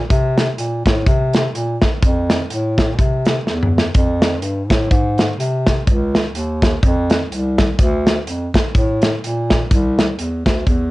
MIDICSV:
0, 0, Header, 1, 3, 480
1, 0, Start_track
1, 0, Key_signature, -1, "major"
1, 0, Tempo, 480000
1, 106, Time_signature, 4, 2, 24, 8
1, 10909, End_track
2, 0, Start_track
2, 0, Title_t, "Bass clarinet"
2, 0, Program_c, 0, 71
2, 103, Note_on_c, 0, 48, 100
2, 512, Note_off_c, 0, 48, 0
2, 583, Note_on_c, 0, 46, 79
2, 819, Note_off_c, 0, 46, 0
2, 855, Note_on_c, 0, 45, 79
2, 1032, Note_off_c, 0, 45, 0
2, 1066, Note_on_c, 0, 48, 93
2, 1474, Note_off_c, 0, 48, 0
2, 1541, Note_on_c, 0, 46, 78
2, 1778, Note_off_c, 0, 46, 0
2, 2022, Note_on_c, 0, 41, 89
2, 2432, Note_off_c, 0, 41, 0
2, 2508, Note_on_c, 0, 45, 82
2, 2986, Note_on_c, 0, 48, 87
2, 3001, Note_off_c, 0, 45, 0
2, 3394, Note_off_c, 0, 48, 0
2, 3466, Note_on_c, 0, 40, 79
2, 3874, Note_off_c, 0, 40, 0
2, 3948, Note_on_c, 0, 41, 92
2, 4426, Note_on_c, 0, 43, 78
2, 4441, Note_off_c, 0, 41, 0
2, 4698, Note_on_c, 0, 45, 80
2, 4713, Note_off_c, 0, 43, 0
2, 4874, Note_off_c, 0, 45, 0
2, 4906, Note_on_c, 0, 44, 96
2, 5315, Note_off_c, 0, 44, 0
2, 5379, Note_on_c, 0, 48, 83
2, 5791, Note_off_c, 0, 48, 0
2, 5871, Note_on_c, 0, 37, 102
2, 6278, Note_off_c, 0, 37, 0
2, 6343, Note_on_c, 0, 39, 79
2, 6753, Note_off_c, 0, 39, 0
2, 6828, Note_on_c, 0, 41, 102
2, 7236, Note_off_c, 0, 41, 0
2, 7300, Note_on_c, 0, 36, 90
2, 7711, Note_off_c, 0, 36, 0
2, 7788, Note_on_c, 0, 38, 105
2, 8196, Note_off_c, 0, 38, 0
2, 8264, Note_on_c, 0, 41, 79
2, 8500, Note_off_c, 0, 41, 0
2, 8746, Note_on_c, 0, 45, 88
2, 9154, Note_off_c, 0, 45, 0
2, 9228, Note_on_c, 0, 46, 80
2, 9635, Note_off_c, 0, 46, 0
2, 9704, Note_on_c, 0, 36, 104
2, 10113, Note_off_c, 0, 36, 0
2, 10186, Note_on_c, 0, 40, 82
2, 10421, Note_off_c, 0, 40, 0
2, 10456, Note_on_c, 0, 38, 76
2, 10632, Note_off_c, 0, 38, 0
2, 10665, Note_on_c, 0, 40, 89
2, 10909, Note_off_c, 0, 40, 0
2, 10909, End_track
3, 0, Start_track
3, 0, Title_t, "Drums"
3, 103, Note_on_c, 9, 42, 94
3, 104, Note_on_c, 9, 36, 111
3, 203, Note_off_c, 9, 42, 0
3, 204, Note_off_c, 9, 36, 0
3, 378, Note_on_c, 9, 38, 91
3, 381, Note_on_c, 9, 42, 70
3, 478, Note_off_c, 9, 38, 0
3, 481, Note_off_c, 9, 42, 0
3, 585, Note_on_c, 9, 42, 89
3, 685, Note_off_c, 9, 42, 0
3, 858, Note_on_c, 9, 36, 77
3, 866, Note_on_c, 9, 42, 58
3, 869, Note_on_c, 9, 38, 105
3, 958, Note_off_c, 9, 36, 0
3, 966, Note_off_c, 9, 42, 0
3, 969, Note_off_c, 9, 38, 0
3, 1066, Note_on_c, 9, 36, 100
3, 1075, Note_on_c, 9, 42, 71
3, 1166, Note_off_c, 9, 36, 0
3, 1175, Note_off_c, 9, 42, 0
3, 1335, Note_on_c, 9, 42, 65
3, 1347, Note_on_c, 9, 38, 99
3, 1435, Note_off_c, 9, 42, 0
3, 1447, Note_off_c, 9, 38, 0
3, 1551, Note_on_c, 9, 42, 77
3, 1651, Note_off_c, 9, 42, 0
3, 1817, Note_on_c, 9, 38, 99
3, 1818, Note_on_c, 9, 42, 71
3, 1822, Note_on_c, 9, 36, 84
3, 1917, Note_off_c, 9, 38, 0
3, 1918, Note_off_c, 9, 42, 0
3, 1922, Note_off_c, 9, 36, 0
3, 2025, Note_on_c, 9, 42, 97
3, 2026, Note_on_c, 9, 36, 117
3, 2125, Note_off_c, 9, 42, 0
3, 2126, Note_off_c, 9, 36, 0
3, 2298, Note_on_c, 9, 38, 94
3, 2302, Note_on_c, 9, 42, 69
3, 2399, Note_off_c, 9, 38, 0
3, 2402, Note_off_c, 9, 42, 0
3, 2504, Note_on_c, 9, 42, 85
3, 2604, Note_off_c, 9, 42, 0
3, 2779, Note_on_c, 9, 36, 77
3, 2783, Note_on_c, 9, 42, 57
3, 2787, Note_on_c, 9, 38, 110
3, 2879, Note_off_c, 9, 36, 0
3, 2883, Note_off_c, 9, 42, 0
3, 2887, Note_off_c, 9, 38, 0
3, 2987, Note_on_c, 9, 36, 102
3, 2992, Note_on_c, 9, 42, 73
3, 3087, Note_off_c, 9, 36, 0
3, 3092, Note_off_c, 9, 42, 0
3, 3254, Note_on_c, 9, 42, 60
3, 3266, Note_on_c, 9, 38, 95
3, 3354, Note_off_c, 9, 42, 0
3, 3366, Note_off_c, 9, 38, 0
3, 3470, Note_on_c, 9, 38, 50
3, 3570, Note_off_c, 9, 38, 0
3, 3628, Note_on_c, 9, 45, 54
3, 3728, Note_off_c, 9, 45, 0
3, 3782, Note_on_c, 9, 38, 89
3, 3882, Note_off_c, 9, 38, 0
3, 3946, Note_on_c, 9, 42, 100
3, 3949, Note_on_c, 9, 36, 110
3, 4046, Note_off_c, 9, 42, 0
3, 4049, Note_off_c, 9, 36, 0
3, 4220, Note_on_c, 9, 38, 100
3, 4223, Note_on_c, 9, 42, 65
3, 4320, Note_off_c, 9, 38, 0
3, 4323, Note_off_c, 9, 42, 0
3, 4422, Note_on_c, 9, 42, 87
3, 4522, Note_off_c, 9, 42, 0
3, 4701, Note_on_c, 9, 36, 80
3, 4705, Note_on_c, 9, 42, 59
3, 4709, Note_on_c, 9, 38, 102
3, 4801, Note_off_c, 9, 36, 0
3, 4805, Note_off_c, 9, 42, 0
3, 4809, Note_off_c, 9, 38, 0
3, 4909, Note_on_c, 9, 36, 97
3, 4910, Note_on_c, 9, 42, 70
3, 5009, Note_off_c, 9, 36, 0
3, 5010, Note_off_c, 9, 42, 0
3, 5178, Note_on_c, 9, 42, 66
3, 5191, Note_on_c, 9, 38, 94
3, 5278, Note_off_c, 9, 42, 0
3, 5291, Note_off_c, 9, 38, 0
3, 5399, Note_on_c, 9, 42, 77
3, 5499, Note_off_c, 9, 42, 0
3, 5664, Note_on_c, 9, 38, 102
3, 5666, Note_on_c, 9, 42, 69
3, 5668, Note_on_c, 9, 36, 80
3, 5764, Note_off_c, 9, 38, 0
3, 5765, Note_off_c, 9, 42, 0
3, 5768, Note_off_c, 9, 36, 0
3, 5872, Note_on_c, 9, 36, 111
3, 5872, Note_on_c, 9, 42, 99
3, 5972, Note_off_c, 9, 36, 0
3, 5972, Note_off_c, 9, 42, 0
3, 6148, Note_on_c, 9, 38, 94
3, 6151, Note_on_c, 9, 42, 68
3, 6248, Note_off_c, 9, 38, 0
3, 6251, Note_off_c, 9, 42, 0
3, 6350, Note_on_c, 9, 42, 92
3, 6450, Note_off_c, 9, 42, 0
3, 6623, Note_on_c, 9, 36, 76
3, 6629, Note_on_c, 9, 42, 59
3, 6633, Note_on_c, 9, 38, 104
3, 6723, Note_off_c, 9, 36, 0
3, 6729, Note_off_c, 9, 42, 0
3, 6733, Note_off_c, 9, 38, 0
3, 6830, Note_on_c, 9, 36, 103
3, 6835, Note_on_c, 9, 42, 70
3, 6930, Note_off_c, 9, 36, 0
3, 6935, Note_off_c, 9, 42, 0
3, 7098, Note_on_c, 9, 42, 63
3, 7110, Note_on_c, 9, 38, 97
3, 7198, Note_off_c, 9, 42, 0
3, 7210, Note_off_c, 9, 38, 0
3, 7321, Note_on_c, 9, 42, 81
3, 7421, Note_off_c, 9, 42, 0
3, 7585, Note_on_c, 9, 38, 97
3, 7586, Note_on_c, 9, 42, 72
3, 7587, Note_on_c, 9, 36, 78
3, 7685, Note_off_c, 9, 38, 0
3, 7686, Note_off_c, 9, 42, 0
3, 7687, Note_off_c, 9, 36, 0
3, 7788, Note_on_c, 9, 42, 99
3, 7789, Note_on_c, 9, 36, 112
3, 7888, Note_off_c, 9, 42, 0
3, 7889, Note_off_c, 9, 36, 0
3, 8067, Note_on_c, 9, 38, 96
3, 8071, Note_on_c, 9, 42, 62
3, 8167, Note_off_c, 9, 38, 0
3, 8171, Note_off_c, 9, 42, 0
3, 8271, Note_on_c, 9, 42, 90
3, 8371, Note_off_c, 9, 42, 0
3, 8542, Note_on_c, 9, 36, 74
3, 8550, Note_on_c, 9, 42, 58
3, 8554, Note_on_c, 9, 38, 107
3, 8642, Note_off_c, 9, 36, 0
3, 8650, Note_off_c, 9, 42, 0
3, 8654, Note_off_c, 9, 38, 0
3, 8748, Note_on_c, 9, 36, 99
3, 8755, Note_on_c, 9, 42, 71
3, 8848, Note_off_c, 9, 36, 0
3, 8855, Note_off_c, 9, 42, 0
3, 9016, Note_on_c, 9, 42, 64
3, 9029, Note_on_c, 9, 38, 99
3, 9116, Note_off_c, 9, 42, 0
3, 9129, Note_off_c, 9, 38, 0
3, 9240, Note_on_c, 9, 42, 82
3, 9340, Note_off_c, 9, 42, 0
3, 9503, Note_on_c, 9, 38, 105
3, 9504, Note_on_c, 9, 42, 74
3, 9506, Note_on_c, 9, 36, 76
3, 9603, Note_off_c, 9, 38, 0
3, 9604, Note_off_c, 9, 42, 0
3, 9606, Note_off_c, 9, 36, 0
3, 9709, Note_on_c, 9, 36, 110
3, 9709, Note_on_c, 9, 42, 100
3, 9809, Note_off_c, 9, 36, 0
3, 9809, Note_off_c, 9, 42, 0
3, 9986, Note_on_c, 9, 38, 91
3, 9989, Note_on_c, 9, 42, 69
3, 10086, Note_off_c, 9, 38, 0
3, 10089, Note_off_c, 9, 42, 0
3, 10186, Note_on_c, 9, 42, 91
3, 10286, Note_off_c, 9, 42, 0
3, 10459, Note_on_c, 9, 36, 76
3, 10462, Note_on_c, 9, 42, 62
3, 10466, Note_on_c, 9, 38, 106
3, 10559, Note_off_c, 9, 36, 0
3, 10562, Note_off_c, 9, 42, 0
3, 10566, Note_off_c, 9, 38, 0
3, 10666, Note_on_c, 9, 36, 92
3, 10669, Note_on_c, 9, 42, 70
3, 10766, Note_off_c, 9, 36, 0
3, 10769, Note_off_c, 9, 42, 0
3, 10909, End_track
0, 0, End_of_file